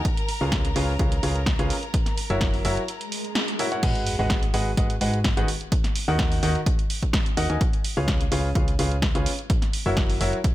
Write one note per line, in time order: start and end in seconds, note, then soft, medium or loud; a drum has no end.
0.00 3.84 A#4 medium
0.00 3.84 A#5 medium
0.05 kick loud
0.05 closed hi-hat medium
0.17 closed hi-hat medium
0.29 open hi-hat loud
0.41 0.74 C#2 loud
0.41 0.65 C#3 medium
0.41 0.65 F4 medium
0.41 0.65 G#4 medium
0.41 0.65 B4 medium
0.41 0.65 C#5 medium
0.41 0.65 F5 loud
0.52 kick loud
0.52 snare loud
0.52 closed hi-hat medium
0.65 closed hi-hat medium
0.76 0.97 C#2 medium
0.76 0.92 C#3 loud
0.76 0.91 F4 medium
0.76 0.91 G#4 medium
0.76 0.91 B4 medium
0.76 0.92 C#5 medium
0.76 0.92 F5 loud
0.76 open hi-hat loud
0.99 1.21 C#2 medium
0.99 1.15 C#3 medium
0.99 1.15 F4 medium
0.99 1.15 G#4 medium
0.99 1.15 B4 medium
0.99 1.15 C#5 medium
0.99 1.15 F5 medium
0.99 kick loud
0.99 closed hi-hat medium
1.12 closed hi-hat medium
1.23 1.57 C#2 loud
1.23 1.39 C#3 medium
1.23 1.39 F4 medium
1.23 1.39 G#4 medium
1.23 1.39 B4 medium
1.23 1.39 C#5 medium
1.23 1.39 F5 loud
1.23 open hi-hat loud
1.36 closed hi-hat soft
1.46 kick loud
1.46 snare loud
1.46 closed hi-hat medium
1.59 1.71 C#2 medium
1.59 1.74 C#3 medium
1.59 1.74 F4 medium
1.59 1.74 G#4 medium
1.59 1.74 B4 medium
1.59 1.74 C#5 medium
1.59 1.74 F5 loud
1.59 closed hi-hat medium
1.70 open hi-hat loud
1.83 closed hi-hat soft
1.94 kick loud
1.94 closed hi-hat medium
2.06 snare soft
2.06 closed hi-hat medium
2.17 open hi-hat loud
2.30 2.63 F#1 medium
2.30 2.62 F#3 medium
2.30 2.62 E4 medium
2.30 2.62 F#4 medium
2.30 2.62 A#4 medium
2.30 2.62 C#5 medium
2.30 2.62 E5 loud
2.30 closed hi-hat soft
2.41 kick loud
2.41 snare loud
2.41 closed hi-hat medium
2.54 open hi-hat medium
2.65 2.78 F#1 loud
2.65 2.80 F#3 medium
2.65 2.80 E4 medium
2.65 2.80 F#4 medium
2.65 2.80 A#4 medium
2.65 2.80 C#5 medium
2.65 2.80 E5 loud
2.65 open hi-hat loud
2.77 closed hi-hat soft
2.88 closed hi-hat medium
2.88 swell medium
3.01 closed hi-hat medium
3.12 open hi-hat loud
3.25 closed hi-hat soft
3.35 snare loud
3.35 closed hi-hat medium
3.48 closed hi-hat medium
3.59 3.69 E4 medium
3.59 3.69 F#4 medium
3.59 3.69 A#4 medium
3.59 3.69 C#5 medium
3.59 3.69 E5 loud
3.59 open hi-hat loud
3.72 3.82 E4 medium
3.72 3.81 F#4 medium
3.72 3.82 A#4 medium
3.72 3.82 C#5 medium
3.72 3.81 F#5 medium
3.72 closed hi-hat soft
3.83 4.17 G#1 loud
3.83 4.14 G#3 loud
3.83 4.14 F#4 medium
3.83 4.14 G#4 medium
3.83 4.14 B4 medium
3.83 4.14 D#5 medium
3.83 4.14 F#5 loud
3.83 kick loud
3.83 closed hi-hat medium
3.83 crash loud
3.83 sub drop medium
3.95 closed hi-hat medium
4.07 open hi-hat loud
4.19 4.52 G#1 loud
4.19 4.43 G#3 medium
4.19 4.43 F#4 medium
4.19 4.43 G#4 medium
4.19 4.43 B4 medium
4.19 4.43 D#5 medium
4.19 4.43 F#5 loud
4.30 kick loud
4.30 snare loud
4.30 closed hi-hat medium
4.43 closed hi-hat medium
4.54 4.75 G#1 medium
4.54 4.69 G#3 loud
4.54 4.69 F#4 medium
4.54 4.69 G#4 medium
4.54 4.69 B4 medium
4.54 4.69 D#5 medium
4.54 4.69 F#5 loud
4.54 open hi-hat loud
4.77 4.99 G#1 loud
4.77 4.93 G#3 medium
4.77 4.93 F#4 medium
4.77 4.93 G#4 medium
4.77 4.93 B4 medium
4.77 4.93 D#5 medium
4.77 4.93 F#5 medium
4.77 kick loud
4.77 closed hi-hat medium
4.90 closed hi-hat medium
5.01 5.35 G#2 loud
5.01 5.17 G#3 medium
5.01 5.17 F#4 medium
5.01 5.17 G#4 medium
5.01 5.17 B4 medium
5.01 5.17 D#5 medium
5.01 5.17 F#5 medium
5.01 open hi-hat loud
5.14 closed hi-hat soft
5.24 kick loud
5.24 snare loud
5.24 closed hi-hat medium
5.37 5.45 G#1 loud
5.37 5.47 D#3 loud
5.37 5.47 F#4 medium
5.37 5.47 G#4 medium
5.37 5.47 B4 medium
5.37 5.47 D#5 medium
5.37 5.47 F#5 loud
5.37 closed hi-hat medium
5.48 open hi-hat loud
5.61 closed hi-hat soft
5.72 kick loud
5.72 closed hi-hat medium
5.84 snare soft
5.84 closed hi-hat medium
5.96 open hi-hat loud
6.08 6.41 D#2 loud
6.08 6.40 D#3 medium
6.08 6.40 D#4 medium
6.08 6.40 F#4 medium
6.08 6.40 A#4 medium
6.08 6.40 D#5 medium
6.08 6.40 F#5 loud
6.19 kick loud
6.19 snare loud
6.19 closed hi-hat medium
6.32 open hi-hat medium
6.43 6.56 D#2 medium
6.43 6.58 D#3 loud
6.43 6.58 D#4 medium
6.43 6.58 F#4 medium
6.43 6.58 A#4 medium
6.43 6.58 D#5 medium
6.43 6.58 F#5 loud
6.43 open hi-hat loud
6.55 closed hi-hat soft
6.66 kick loud
6.66 closed hi-hat medium
6.79 closed hi-hat medium
6.90 open hi-hat loud
7.03 kick medium
7.03 closed hi-hat soft
7.13 kick loud
7.13 snare loud
7.13 closed hi-hat medium
7.26 closed hi-hat medium
7.37 7.47 D#2 loud
7.37 7.47 D#4 loud
7.37 7.47 F#4 medium
7.37 7.47 A#4 medium
7.37 7.47 D#5 medium
7.37 7.47 F#5 loud
7.37 open hi-hat loud
7.50 7.57 D#2 medium
7.50 7.60 D#4 medium
7.50 7.60 F#4 medium
7.50 7.60 A#4 medium
7.50 7.60 D#5 medium
7.50 7.60 G#5 medium
7.50 closed hi-hat soft
7.61 kick loud
7.61 closed hi-hat medium
7.73 closed hi-hat medium
7.84 open hi-hat loud
7.97 8.29 C#2 loud
7.97 8.21 C#3 medium
7.97 8.21 F4 medium
7.97 8.21 G#4 medium
7.97 8.21 B4 medium
7.97 8.21 C#5 medium
7.97 8.21 F5 loud
8.08 kick loud
8.08 snare loud
8.08 closed hi-hat medium
8.21 closed hi-hat medium
8.32 8.53 C#2 loud
8.32 8.47 C#3 loud
8.32 8.47 F4 medium
8.32 8.47 G#4 medium
8.32 8.47 B4 medium
8.32 8.47 C#5 medium
8.32 8.47 F5 loud
8.32 open hi-hat loud
8.55 8.77 C#2 loud
8.55 8.71 C#3 medium
8.55 8.71 F4 medium
8.55 8.71 G#4 medium
8.55 8.71 B4 medium
8.55 8.71 C#5 medium
8.55 8.71 F5 medium
8.55 kick loud
8.55 closed hi-hat medium
8.68 closed hi-hat medium
8.79 9.13 C#2 loud
8.79 8.95 C#3 medium
8.79 8.95 F4 medium
8.79 8.95 G#4 medium
8.79 8.95 B4 medium
8.79 8.95 C#5 medium
8.79 8.95 F5 loud
8.79 open hi-hat loud
8.91 closed hi-hat soft
9.02 kick loud
9.02 snare loud
9.02 closed hi-hat medium
9.15 9.27 C#2 loud
9.15 9.30 C#3 loud
9.15 9.30 F4 medium
9.15 9.30 G#4 medium
9.15 9.30 B4 medium
9.15 9.30 C#5 medium
9.15 9.30 F5 loud
9.15 closed hi-hat medium
9.26 open hi-hat loud
9.39 closed hi-hat soft
9.50 kick loud
9.50 closed hi-hat medium
9.62 snare soft
9.62 closed hi-hat medium
9.73 open hi-hat loud
9.86 10.18 F#1 loud
9.86 10.18 F#3 medium
9.86 10.18 E4 medium
9.86 10.18 F#4 medium
9.86 10.18 A#4 medium
9.86 10.18 C#5 medium
9.86 10.18 E5 loud
9.97 kick loud
9.97 snare loud
9.97 closed hi-hat medium
10.10 open hi-hat medium
10.21 10.34 F#1 loud
10.21 10.36 F#3 medium
10.21 10.36 E4 medium
10.21 10.36 F#4 medium
10.21 10.36 A#4 medium
10.21 10.36 C#5 medium
10.21 10.36 E5 loud
10.21 open hi-hat loud
10.33 closed hi-hat soft
10.44 kick loud
10.44 closed hi-hat medium